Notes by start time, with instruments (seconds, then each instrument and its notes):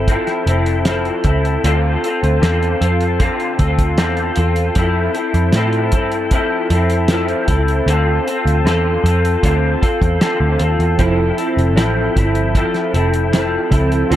Already playing: picked electric bass G1
0.08 clean electric guitar F3 C4 E4 A4, kick, closed hi-hat
0.27 snare, closed hi-hat
0.46 picked electric bass F1, clean electric guitar C4 E4 A4, closed hi-hat
0.66 closed hi-hat
0.85 clean electric guitar F3 C4 E4 A4, snare, closed hi-hat
1.05 closed hi-hat
1.24 picked electric bass C#2, clean electric guitar E4 A4, kick, closed hi-hat
1.28 clean electric guitar C4
1.45 closed hi-hat
1.64 picked electric bass D2, clean electric guitar D3 C4 F4 A4, closed hi-hat
2.04 clean electric guitar C4 F4 A4, closed hi-hat
2.23 picked electric bass D2, closed hi-hat
2.41 picked electric bass E2, clean electric guitar D3 C4 F4 A4, snare, closed hi-hat
2.63 closed hi-hat
2.80 picked electric bass F2, clean electric guitar F4 A4, closed hi-hat
2.85 clean electric guitar C4
3.01 closed hi-hat
3.19 clean electric guitar D3 C4 F4 A4, kick, closed hi-hat
3.40 closed hi-hat
3.59 picked electric bass D2, clean electric guitar F4 A4, kick, closed hi-hat
3.63 clean electric guitar C4
3.79 kick, closed hi-hat
3.98 picked electric bass E2, clean electric guitar D3 C4 F4 A4, snare, closed hi-hat
4.17 closed hi-hat
4.36 picked electric bass E2, clean electric guitar F4 A4, closed hi-hat
4.40 clean electric guitar C4
4.56 closed hi-hat
4.75 picked electric bass F2, clean electric guitar F3 C4 E4 A4, kick, closed hi-hat
5.15 clean electric guitar C4 E4 A4, closed hi-hat
5.34 picked electric bass F2, closed hi-hat
5.53 picked electric bass A2, clean electric guitar F3 C4, snare, closed hi-hat
5.57 clean electric guitar E4 A4
5.73 closed hi-hat
5.92 picked electric bass G2, clean electric guitar E4 A4, kick, closed hi-hat
5.97 clean electric guitar C4
6.12 closed hi-hat
6.31 clean electric guitar F3 C4 E4, kick, closed hi-hat
6.35 clean electric guitar A4
6.70 picked electric bass F2, clean electric guitar E4 A4, closed hi-hat
6.75 clean electric guitar C4
6.90 closed hi-hat
7.08 clean electric guitar F3 C4, snare, closed hi-hat
7.13 clean electric guitar E4 A4
7.28 closed hi-hat
7.48 picked electric bass C#2, clean electric guitar E4 A4, kick, closed hi-hat
7.52 clean electric guitar C4
7.68 closed hi-hat
7.86 picked electric bass D2, clean electric guitar D3 C4 F4 A4, closed hi-hat
8.27 clean electric guitar C4 F4 A4, closed hi-hat
8.45 picked electric bass D2, closed hi-hat
8.65 picked electric bass E2, clean electric guitar D3 C4 F4 A4, snare, closed hi-hat
9.04 picked electric bass F2, clean electric guitar F4 A4, closed hi-hat
9.08 clean electric guitar C4
9.25 closed hi-hat
9.43 picked electric bass D2, clean electric guitar D3 C4 F4 A4, kick, closed hi-hat
9.81 clean electric guitar C4 F4 A4, muted picked electric bass stroke, kick, closed hi-hat
10.02 picked electric bass E2, kick, closed hi-hat
10.21 clean electric guitar D3 C4 F4 A4, snare, closed hi-hat
10.40 picked electric bass D2
10.59 picked electric bass D#2, clean electric guitar C4 F4 A4, closed hi-hat
10.79 picked electric bass E2, closed hi-hat
10.98 picked electric bass F1, synth keys F3 C4 E4, clean electric guitar F3 C4 E4 A4, kick, closed hi-hat
11.02 synth keys A4
11.37 clean electric guitar C4 E4 A4, closed hi-hat
11.57 picked electric bass F1, closed hi-hat
11.76 picked electric bass A1, clean electric guitar F3 C4 E4 A4, snare, closed hi-hat
12.16 picked electric bass G1, clean electric guitar C4 E4 A4, kick, closed hi-hat
12.35 closed hi-hat
12.55 clean electric guitar F3 C4 E4 A4, kick, closed hi-hat
12.74 snare, closed hi-hat
12.94 picked electric bass F1, clean electric guitar C4 E4 A4, closed hi-hat
13.14 closed hi-hat
13.33 clean electric guitar F3 C4 E4 A4, snare, closed hi-hat
13.71 picked electric bass C#2, synth keys F3 C4 E4 A4, clean electric guitar E4 A4, kick, closed hi-hat
13.75 clean electric guitar C4
13.92 closed hi-hat
14.08 picked electric bass D2, clean electric guitar D3 C4 F4, synth keys C4 F4, closed hi-hat
14.12 synth keys D4, clean electric guitar A4